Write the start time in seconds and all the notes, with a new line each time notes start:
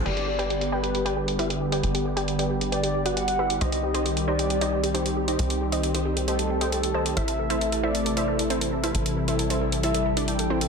0.06 G1 D3 G3 B3 G4 B4 D5 G5, closed hi-hat, crash
0.17 G4, closed hi-hat
0.28 G4
0.39 G4 B4 D5 G5, closed hi-hat
0.50 G4, closed hi-hat
0.61 G4, closed hi-hat
0.72 G4 B4 D5 G5
0.83 G4, closed hi-hat
0.94 G4, closed hi-hat
1.05 G4 B4 D5 G5, closed hi-hat
1.17 G4
1.28 G4, closed hi-hat
1.39 E4 G4 B4 E5, closed hi-hat
1.50 G4, closed hi-hat
1.61 G4
1.72 G4 B4 D5 G5, closed hi-hat
1.83 G1 G4, closed hi-hat
1.94 G4, closed hi-hat
2.05 G4
2.17 G4 B4 D5 G5, closed hi-hat
2.28 G4, closed hi-hat
2.39 G4 B4 D5 G5, closed hi-hat
2.50 G4
2.61 G4, closed hi-hat
2.72 G4 B4 D5 G5, closed hi-hat
2.83 G4, closed hi-hat
2.94 G4
3.06 F#4 B4 D5 F#5, closed hi-hat
3.16 G4 F#5, closed hi-hat
3.28 G4, closed hi-hat
3.39 E4 G4 B4 E5
3.50 G4, closed hi-hat
3.61 C2 D#3 C4 D#4 G4 C5 D#5, closed hi-hat
3.72 G4, closed hi-hat
3.83 G4
3.94 D#4 G4 C5 D#5, closed hi-hat
4.06 G4, closed hi-hat
4.17 G4, closed hi-hat
4.28 D#4 G4 C5 D5 D#5
4.39 G4, closed hi-hat
4.50 G4, closed hi-hat
4.61 D#4 G4 C5 D#5, closed hi-hat
4.72 G4
4.83 G4, closed hi-hat
4.94 C4 D#4 G4 C5, closed hi-hat
5.06 G4, closed hi-hat
5.17 G4
5.28 D#4 G4 C5 D#5, closed hi-hat
5.39 C2 G4, closed hi-hat
5.50 G4, closed hi-hat
5.61 G4
5.72 D#4 G4 C5 D#5, closed hi-hat
5.83 G4, closed hi-hat
5.94 D#4 G4 C5 D#5, closed hi-hat
6.05 G4
6.17 G4, closed hi-hat
6.28 G4 A4 C5 D#5 G5, closed hi-hat
6.39 G4, closed hi-hat
6.50 G4
6.61 G4 C5 D#5 G5, closed hi-hat
6.72 G4 A4, closed hi-hat
6.83 G4, closed hi-hat
6.94 A4 C5 D#5 A5
7.06 G4, closed hi-hat
7.17 A1 C3 E3 A3 E4 A4 C5 E5, closed hi-hat
7.28 A4, closed hi-hat
7.39 A4
7.50 E4 A4 C5 E5, closed hi-hat
7.61 A4, closed hi-hat
7.72 A4, closed hi-hat
7.83 E4 A4 C5 D5 E5
7.95 A4, closed hi-hat
8.06 A4, closed hi-hat
8.17 E4 A4 C5 E5, closed hi-hat
8.28 A4
8.39 A4, closed hi-hat
8.50 C4 E4 A4 C5, closed hi-hat
8.61 A4, closed hi-hat
8.72 A4
8.83 E4 A4 C5 E5, closed hi-hat
8.94 A1 G3 A4, closed hi-hat
9.06 A4, closed hi-hat
9.17 A4
9.28 E4 A4 C5 E5, closed hi-hat
9.39 A4, closed hi-hat
9.50 E4 A4 C5 E5, closed hi-hat
9.61 A4
9.72 A4, closed hi-hat
9.83 E4 A4 C5 E5, closed hi-hat
9.94 A4, closed hi-hat
10.06 A4
10.17 D4 E4 A4 D5, closed hi-hat
10.28 A4 G5, closed hi-hat
10.39 A4, closed hi-hat
10.50 C4 E4 A4 C5
10.61 A4, closed hi-hat